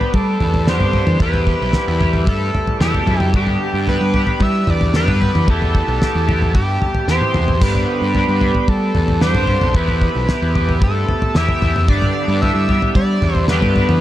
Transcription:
Already playing: G3 B3 D4 G4 B4 D5 B5 D6
0.01 floor tom
0.13 G3 A4, kick, floor tom
0.40 E2, floor tom, mid tom
0.54 floor tom
0.66 G2 D3 G3 B3 D4 G4 C5, snare
0.80 G2, floor tom, mid tom
0.93 G3 B3 D4 G4, floor tom
1.07 E3, mid tom
1.20 E2 B2 E3 G3 E4 G4 B4 E5 E6, kick, floor tom
1.34 floor tom
1.47 kick
1.61 B1
1.72 E3 G3 E4 G4, snare, floor tom
1.88 E2
1.98 E3 G3 E4 G4, floor tom, mid tom
2.13 floor tom
2.27 G2 A4, kick, floor tom
2.55 floor tom, mid tom
2.67 floor tom
2.79 E2 B2 E3 G3 E4 G4 A4, snare
2.94 floor tom, mid tom
3.06 F#2 E3 G3 E4 G4, floor tom
3.20 mid tom
3.33 G2 D3 G3 B3 D4 G4 D5 D6, kick, floor tom
3.47 floor tom
3.74 G2
3.87 G3 B3 D4 G4 B4, floor tom
4.01 G2
4.14 G3 B3 D4 G4, floor tom
4.27 floor tom
4.40 G3 E5, kick, floor tom
4.67 E2 D5, floor tom, mid tom
4.81 floor tom
4.94 G2 D3 G3 B3 D4 G4 B4, snare
5.08 G2, floor tom, mid tom
5.21 G3 B3 D4 G4, floor tom
5.35 E3, mid tom
5.46 E2 E3 B3 E4 G4 A4 E5 B5 E6, kick, floor tom
5.62 floor tom
5.75 kick
5.88 B1
6.00 E3 B3 E4 G4, snare, floor tom
6.15 E2
6.27 B3 E4 G4, floor tom, mid tom
6.42 floor tom
6.55 G2 G4, kick, floor tom
6.82 floor tom, mid tom
6.95 floor tom
7.07 E2 E3 B3 E4 C5, snare
7.11 G4
7.21 high tom
7.33 E2 B3 E4 G4, mid tom
7.48 floor tom
7.61 G2 D3 G3 B3 D4 G4 B4 D5 D6, kick, floor tom, splash
7.75 floor tom
8.02 G2
8.13 G3 B3 D4 G4, floor tom
8.28 G2
8.40 G3 B3 D4 G4, floor tom
8.55 floor tom
8.68 G3 A4, kick, floor tom
8.95 E2, floor tom, mid tom
9.08 floor tom
9.20 G2 D3 G3 B3 D4 G4 C5, snare
9.35 G2, floor tom, mid tom
9.47 G3 B3 D4 G4, floor tom
9.61 B1, mid tom
9.74 E2 E3 B3 E4 G4 B4 E5 E6, kick, floor tom
9.88 floor tom
10.02 kick
10.15 B1
10.27 E3 B3 E4 G4, snare, floor tom
10.42 E2
10.55 B3 E4 G4, floor tom, mid tom
10.69 floor tom
10.82 G2 A4, kick, floor tom
11.09 floor tom, mid tom
11.22 floor tom
11.34 E2 E3 B3 E4 G4 E5, snare
11.48 floor tom, mid tom
11.61 E2 B3 E4 G4, floor tom
11.76 mid tom
11.87 G2 D3 G3 B3 D4 G4 D5 B5 D6, kick, floor tom
12.02 floor tom
12.28 G2
12.41 G3 B3 D4 G4 E5, floor tom
12.55 G2
12.69 G3 B3 D4 G4, floor tom
12.82 floor tom
12.95 G3 D5, kick, floor tom
13.22 E2, floor tom, mid tom
13.35 floor tom
13.48 G2 D3 G3 B3 D4 B4, snare
13.52 G4
13.62 G2, floor tom, mid tom
13.76 G3 B3 D4 G4, floor tom
13.89 E3, mid tom

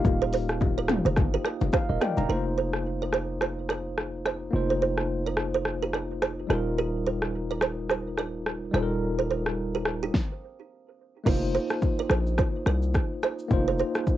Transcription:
Already playing: A#3 D#4 F4 G4 F5
0.05 D#1, kick, low conga, shaker
0.22 A4 C5
0.33 A4 C5, open hi-hat, shaker
0.49 cross-stick, shaker
0.61 kick, high bongo, low conga, shaker
0.78 A#4 D5
0.88 cross-stick, mid tom, low bongo, shaker
1.05 F1 A4 C5, shaker
1.17 G1, kick, cross-stick, low conga, shaker
1.34 G4 A#4
1.45 A#4 D5, cross-stick, shaker
1.61 F1, high bongo, low bongo, shaker
1.73 G4 C5 F5, kick, cross-stick, high bongo, shaker
1.89 D#1 A#4 D#5
2.01 G4 A#4 D5 G5, cross-stick, mid tom, high bongo, shaker
2.17 D#1 F5 A#5, low bongo, shaker
2.27 F1 A3 D#4 F4 A#4
2.32 A#3 C5
2.58 A4 C5
2.73 cross-stick
3.02 A#4 D5
3.13 A4 C5, cross-stick
3.41 F4 C5, cross-stick
3.69 A#4 D5, cross-stick
3.98 cross-stick
4.26 C5 D#5, cross-stick
4.51 F1 A#3 D#4 F4
4.56 C5
4.70 A4 C5
4.82 A4 C5
4.98 cross-stick
5.26 A#4 D5
5.37 cross-stick
5.54 A4 C5
5.65 cross-stick
5.83 G4 A#4
5.93 A#4 D5, cross-stick
6.22 F4 C5, cross-stick
6.47 D#1 G3 D#4 F4 A#4, cross-stick
6.51 G4 A#4
6.78 G4 A#4
7.07 A4 C5
7.22 cross-stick
7.51 A#4 D5
7.61 A4 C5, cross-stick
7.89 G4 C5, cross-stick
8.17 A#4 D5, cross-stick
8.46 cross-stick
8.71 D#1 G3 D#4 F4 C5 D#5, cross-stick
8.76 A4
8.83 A#4
9.19 A4 C5
9.31 A4 C5
9.46 cross-stick
9.75 G4 A#4
9.85 cross-stick
10.03 D#4 G4
10.14 kick, snare
11.24 F1 A3 D#4 F4 A#4, kick, crash, shaker
11.29 A#3 C5
11.54 A4 C5, shaker
11.70 cross-stick, shaker
11.82 kick, shaker
11.99 A#4 D5
12.10 A#1 A4 C5, cross-stick, shaker
12.27 shaker
12.38 F4 C5, kick, cross-stick, shaker
12.66 C2 A#4 D5, cross-stick, shaker
12.83 shaker
12.94 kick, cross-stick, shaker
13.23 C5 D#5, cross-stick, shaker
13.39 shaker
13.48 F1 A#3 D#4 F4, kick, shaker
13.53 C5
13.68 A4 C5
13.79 A4 C5, shaker
13.95 cross-stick, shaker
14.07 kick, shaker

